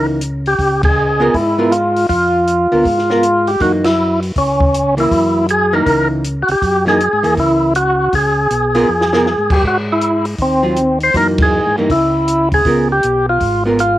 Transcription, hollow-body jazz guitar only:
Already playing: E3 A#3 D#4
1.20 B3 F4 A#4
1.59 B3 F4 A#4
2.72 B3 F4 A#4
3.10 B3 F4 A#4
3.60 E3 A#3 D#4
4.97 E3 A#3
5.73 E3 A#3 D#4
6.86 E3 A#3 D#4
7.23 E3 A#3
8.75 B3 F4 A#4
9.13 B3 F4 A#4
10.63 F#3 C4 F4
11.15 E3 A#3 D#4
11.78 E3 A#3 D#4
12.66 B3 F4 A#4
13.66 B3 F4 A#4

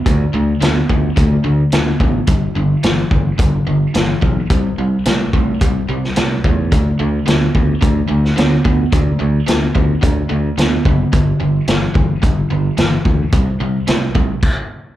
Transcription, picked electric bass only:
0.06 D2
0.34 D2
0.62 D2
0.90 D2
1.18 D2
1.45 D2
1.73 D2
2.00 A1
2.28 G1
2.56 G1
2.84 G1
3.11 G1
3.39 G1
3.67 G1
3.95 G1
4.23 B1
4.51 C2
4.78 C2
5.06 C2
5.34 C2
5.61 C2
5.89 C2
6.18 C2
6.44 E2
6.72 D2
7.00 D2
7.28 D2
7.55 D2
7.82 D2
8.10 D2
8.38 D2
8.65 D2
8.93 D2
9.21 D2
9.48 D2
9.76 D2
10.03 D2
10.31 D2
10.58 D2
10.85 F#1
11.13 G1
11.41 G1
11.68 G1
11.95 G1
12.23 G1
12.51 G1
12.78 G1
13.06 D2
13.33 C2
13.60 C2
13.88 C2
14.15 C2

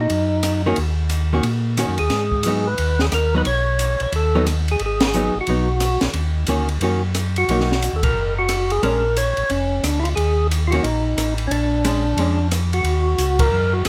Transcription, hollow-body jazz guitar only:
0.66 D#3 A#3 C#4 F#4
1.33 D#3 A#3 C#4 F#4
1.78 D#3 A#3 C#4 F#4
2.46 F#3 B3 D#4
3.34 F#3 B3 D#4
4.35 F#3 B3 D#4
5.14 F#3 B3 D#4
5.48 F#3 B3 D#4
6.48 D#3 A#3 C#4 F#4
6.82 D#3 A#3 C#4 F#4
7.50 F#3 A#3 D#4
8.83 G#3 C#4 D4
10.73 D#3 A#3 C#4 F#4
11.85 G#3 C#4 D4
12.19 G#3 C#4 D4

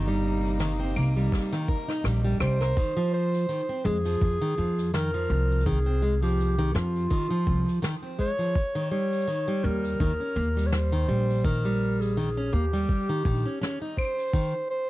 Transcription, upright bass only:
Already playing: G1
0.96 C2
2.04 A#1
2.40 C2
3.85 F2
4.22 F2
4.58 F2
5.30 C2
6.75 F2
7.47 C2
9.64 D#2
10.00 D#2
10.36 D#2
11.08 A#1
12.53 D#2
13.25 A#1

